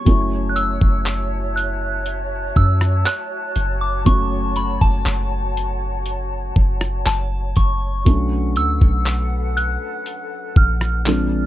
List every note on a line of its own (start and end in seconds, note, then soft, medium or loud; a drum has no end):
0.00 0.10 F#4 medium
0.00 8.02 C#5 medium
0.00 0.52 C#6 loud
0.05 0.78 F#1 loud
0.05 4.02 F#3 medium
0.05 4.02 A3 medium
0.05 4.03 C#4 medium
0.05 4.03 E4 medium
0.05 7.77 F#4 medium
0.05 4.03 E5 medium
0.05 7.76 A5 medium
0.05 kick loud
0.05 closed hi-hat medium
0.49 0.56 F#6 medium
0.56 1.59 E6 medium
0.56 closed hi-hat medium
0.81 2.52 F#1 loud
0.81 kick loud
1.06 clap loud
1.06 closed hi-hat medium
1.56 2.59 F#6 loud
1.56 closed hi-hat medium
2.06 closed hi-hat medium
2.56 3.04 F#2 loud
2.56 3.08 E6 medium
2.56 kick medium
2.81 cross-stick loud
3.06 3.84 F#6 loud
3.06 clap loud
3.06 closed hi-hat medium
3.56 4.04 F#1 loud
3.56 closed hi-hat medium
3.81 3.93 D6 medium
4.05 4.78 F#1 loud
4.05 8.01 F#3 medium
4.05 8.02 A3 medium
4.05 8.03 C#4 medium
4.05 8.03 F#4 medium
4.05 7.78 F#5 medium
4.05 4.58 C#6 loud
4.05 kick loud
4.05 closed hi-hat medium
4.56 4.68 B5 medium
4.56 closed hi-hat medium
4.81 5.05 F#1 loud
4.81 7.02 A5 medium
4.81 kick loud
5.06 6.52 F#1 loud
5.06 clap loud
5.06 closed hi-hat medium
5.57 closed hi-hat medium
6.06 closed hi-hat medium
6.56 7.04 F#1 loud
6.56 kick medium
6.81 cross-stick medium
7.06 7.54 F#1 loud
7.06 7.58 A5 medium
7.06 clap loud
7.06 closed hi-hat medium
7.56 8.04 F#1 loud
7.56 8.59 C#6 medium
7.56 kick medium
7.56 closed hi-hat medium
8.05 8.58 B1 loud
8.05 11.02 F#3 medium
8.05 11.02 A3 medium
8.05 11.03 C#4 medium
8.05 11.03 D4 medium
8.05 11.03 A4 medium
8.05 11.04 B4 medium
8.05 11.04 F#5 medium
8.05 kick loud
8.05 closed hi-hat medium
8.56 8.80 D2 loud
8.56 9.60 E6 loud
8.56 closed hi-hat medium
8.81 9.77 B1 loud
8.81 kick medium
9.06 clap loud
9.06 closed hi-hat medium
9.57 10.60 F#6 loud
9.57 closed hi-hat medium
10.06 closed hi-hat medium
10.56 11.46 A#1 loud
10.56 11.46 F6 loud
10.56 kick loud
10.81 cross-stick medium
11.06 11.46 F3 medium
11.06 11.46 G#3 medium
11.06 11.46 C4 medium
11.06 11.46 D4 medium
11.06 11.46 G#4 medium
11.06 11.46 A#4 medium
11.06 11.46 D5 medium
11.06 clap loud
11.06 closed hi-hat medium